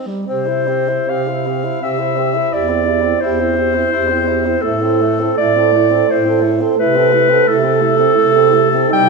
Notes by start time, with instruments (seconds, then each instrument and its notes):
0.07 tenor saxophone G3
0.26 bass clarinet C3, tenor saxophone C4, alto saxophone G4, clarinet C5
0.46 tenor saxophone E4, alto saxophone C5
0.67 tenor saxophone C4, alto saxophone G4
0.88 tenor saxophone E4, alto saxophone C5
1.08 bass clarinet C3, tenor saxophone C4, alto saxophone G4, clarinet F5
1.27 tenor saxophone E4, alto saxophone C5
1.46 tenor saxophone C4, alto saxophone G4
1.64 tenor saxophone E4, alto saxophone C5
1.82 bass clarinet C3, tenor saxophone C4, alto saxophone G4, clarinet E5
1.99 tenor saxophone E4, alto saxophone C5
2.16 tenor saxophone C4, alto saxophone G4
2.34 tenor saxophone E4, alto saxophone C5
2.51 bass clarinet E2, tenor saxophone E4, alto saxophone G4, clarinet D5
2.69 tenor saxophone C4, alto saxophone E4
2.86 tenor saxophone E4, alto saxophone G4
3.03 tenor saxophone C4, alto saxophone E4
3.20 bass clarinet E2, tenor saxophone E4, clarinet C5
3.25 alto saxophone G4
3.40 tenor saxophone C4, alto saxophone E4
3.56 tenor saxophone E4, alto saxophone G4
3.75 tenor saxophone C4, alto saxophone E4
3.92 bass clarinet E2, tenor saxophone E4, alto saxophone G4
4.10 tenor saxophone C4, alto saxophone E4
4.28 tenor saxophone E4, alto saxophone G4
4.46 tenor saxophone C4, alto saxophone E4
4.62 bass clarinet A2, tenor saxophone A3, alto saxophone E4, clarinet A4
4.82 tenor saxophone C4, alto saxophone A4
5.01 tenor saxophone A3, alto saxophone E4
5.20 tenor saxophone C4, alto saxophone A4
5.38 bass clarinet A2, tenor saxophone A3, alto saxophone E4, clarinet D5
5.56 tenor saxophone C4, alto saxophone A4
5.72 tenor saxophone A3, alto saxophone E4
5.90 tenor saxophone C4
5.94 alto saxophone A4
6.08 bass clarinet A2, tenor saxophone A3, alto saxophone E4, clarinet C5
6.25 tenor saxophone C4, alto saxophone A4
6.42 tenor saxophone A3, alto saxophone E4
6.61 tenor saxophone C4, alto saxophone A4
6.78 bass clarinet C3, tenor saxophone A3, alto saxophone E4, clarinet B4
6.96 tenor saxophone C4, alto saxophone A4
7.13 tenor saxophone A3, alto saxophone E4
7.29 tenor saxophone C4, alto saxophone A4
7.47 bass clarinet C3, tenor saxophone A3, alto saxophone E4, clarinet A4
7.64 tenor saxophone C4, alto saxophone A4
7.80 tenor saxophone A3, alto saxophone E4
7.97 tenor saxophone C4, alto saxophone A4
8.14 bass clarinet C3, tenor saxophone A3, alto saxophone E4
8.32 alto saxophone A4
8.36 tenor saxophone C4
8.50 alto saxophone E4
8.54 tenor saxophone A3
8.70 alto saxophone A4
8.74 tenor saxophone C4
8.89 alto saxophone D#4
8.93 bass clarinet C3, tenor saxophone G3, clarinet G5